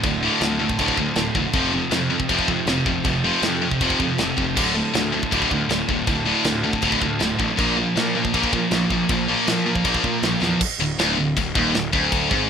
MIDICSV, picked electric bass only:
0, 0, Header, 1, 2, 480
1, 0, Start_track
1, 0, Tempo, 377834
1, 41, Time_signature, 4, 2, 24, 8
1, 15876, End_track
2, 0, Start_track
2, 0, Title_t, "Picked electric bass"
2, 0, Program_c, 0, 34
2, 46, Note_on_c, 0, 26, 87
2, 347, Note_off_c, 0, 26, 0
2, 520, Note_on_c, 0, 38, 91
2, 822, Note_off_c, 0, 38, 0
2, 1001, Note_on_c, 0, 26, 93
2, 1152, Note_off_c, 0, 26, 0
2, 1240, Note_on_c, 0, 38, 92
2, 1391, Note_off_c, 0, 38, 0
2, 1480, Note_on_c, 0, 26, 92
2, 1631, Note_off_c, 0, 26, 0
2, 1712, Note_on_c, 0, 28, 88
2, 1866, Note_off_c, 0, 28, 0
2, 1950, Note_on_c, 0, 29, 92
2, 2256, Note_off_c, 0, 29, 0
2, 2425, Note_on_c, 0, 41, 92
2, 2732, Note_off_c, 0, 41, 0
2, 2913, Note_on_c, 0, 29, 89
2, 3067, Note_off_c, 0, 29, 0
2, 3152, Note_on_c, 0, 41, 95
2, 3306, Note_off_c, 0, 41, 0
2, 3384, Note_on_c, 0, 29, 92
2, 3540, Note_off_c, 0, 29, 0
2, 3628, Note_on_c, 0, 29, 96
2, 3783, Note_off_c, 0, 29, 0
2, 3871, Note_on_c, 0, 29, 95
2, 4176, Note_off_c, 0, 29, 0
2, 4347, Note_on_c, 0, 41, 81
2, 4654, Note_off_c, 0, 41, 0
2, 4835, Note_on_c, 0, 29, 87
2, 4988, Note_off_c, 0, 29, 0
2, 5078, Note_on_c, 0, 41, 88
2, 5230, Note_off_c, 0, 41, 0
2, 5326, Note_on_c, 0, 29, 87
2, 5476, Note_off_c, 0, 29, 0
2, 5558, Note_on_c, 0, 29, 88
2, 5804, Note_off_c, 0, 29, 0
2, 5804, Note_on_c, 0, 26, 95
2, 6106, Note_off_c, 0, 26, 0
2, 6288, Note_on_c, 0, 38, 82
2, 6588, Note_off_c, 0, 38, 0
2, 6761, Note_on_c, 0, 26, 93
2, 6912, Note_off_c, 0, 26, 0
2, 6997, Note_on_c, 0, 38, 85
2, 7150, Note_off_c, 0, 38, 0
2, 7238, Note_on_c, 0, 26, 92
2, 7390, Note_off_c, 0, 26, 0
2, 7478, Note_on_c, 0, 26, 95
2, 7630, Note_off_c, 0, 26, 0
2, 7714, Note_on_c, 0, 26, 89
2, 8019, Note_off_c, 0, 26, 0
2, 8192, Note_on_c, 0, 38, 86
2, 8497, Note_off_c, 0, 38, 0
2, 8673, Note_on_c, 0, 26, 94
2, 8827, Note_off_c, 0, 26, 0
2, 8910, Note_on_c, 0, 38, 92
2, 9065, Note_off_c, 0, 38, 0
2, 9154, Note_on_c, 0, 26, 93
2, 9308, Note_off_c, 0, 26, 0
2, 9391, Note_on_c, 0, 33, 92
2, 9546, Note_off_c, 0, 33, 0
2, 9634, Note_on_c, 0, 34, 97
2, 9939, Note_off_c, 0, 34, 0
2, 10115, Note_on_c, 0, 46, 89
2, 10419, Note_off_c, 0, 46, 0
2, 10596, Note_on_c, 0, 34, 93
2, 10749, Note_off_c, 0, 34, 0
2, 10832, Note_on_c, 0, 46, 99
2, 10986, Note_off_c, 0, 46, 0
2, 11072, Note_on_c, 0, 34, 88
2, 11226, Note_off_c, 0, 34, 0
2, 11308, Note_on_c, 0, 34, 92
2, 11464, Note_off_c, 0, 34, 0
2, 11551, Note_on_c, 0, 34, 98
2, 11856, Note_off_c, 0, 34, 0
2, 12041, Note_on_c, 0, 46, 88
2, 12344, Note_off_c, 0, 46, 0
2, 12507, Note_on_c, 0, 34, 96
2, 12662, Note_off_c, 0, 34, 0
2, 12750, Note_on_c, 0, 46, 94
2, 12905, Note_off_c, 0, 46, 0
2, 12990, Note_on_c, 0, 34, 92
2, 13145, Note_off_c, 0, 34, 0
2, 13235, Note_on_c, 0, 40, 92
2, 13388, Note_off_c, 0, 40, 0
2, 13711, Note_on_c, 0, 26, 78
2, 13938, Note_off_c, 0, 26, 0
2, 13955, Note_on_c, 0, 26, 94
2, 14181, Note_off_c, 0, 26, 0
2, 14201, Note_on_c, 0, 26, 78
2, 14424, Note_off_c, 0, 26, 0
2, 14440, Note_on_c, 0, 26, 89
2, 14663, Note_off_c, 0, 26, 0
2, 14676, Note_on_c, 0, 27, 102
2, 14901, Note_off_c, 0, 27, 0
2, 14933, Note_on_c, 0, 26, 87
2, 15150, Note_off_c, 0, 26, 0
2, 15156, Note_on_c, 0, 26, 107
2, 15604, Note_off_c, 0, 26, 0
2, 15635, Note_on_c, 0, 32, 104
2, 15860, Note_off_c, 0, 32, 0
2, 15876, End_track
0, 0, End_of_file